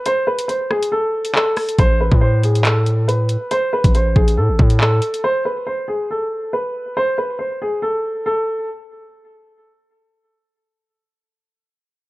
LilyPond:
<<
  \new Staff \with { instrumentName = "Upright piano" } { \time 4/4 \key a \minor \tempo 4 = 139 c''8 b'8 c''8 gis'8 a'4 a'4 | c''8 b'8 c''8 gis'8 a'4 b'4 | c''8 b'8 c''8 gis'8 a'4 a'4 | c''8 b'8 c''8 gis'8 a'4 b'4 |
c''8 b'8 c''8 gis'8 a'4 a'4 | r1 | r1 | }
  \new Staff \with { instrumentName = "808-style bass" } { \clef bass \time 4/4 \key a \minor r1 | a,,8. a,2. r16 | r8. a,,8. a,,8 a,16 a,,16 a,4 r8 | r1 |
r1 | r1 | r1 | }
  \new DrumStaff \with { instrumentName = "Drums" } \drummode { \time 4/4 hh8. hh16 hh8 ss16 hh16 r8. hh16 hc8 <hho ss>16 hh16 | <hh bd>8. bd16 r8 hh16 hh16 <hc hh>8 hh8 hh8 hh8 | hh8. <hh bd>16 hh8 bd16 hh16 r8 bd16 hh16 hc8 hh16 hh16 | r4 r4 r4 r4 |
r4 r4 r4 r4 | r4 r4 r4 r4 | r4 r4 r4 r4 | }
>>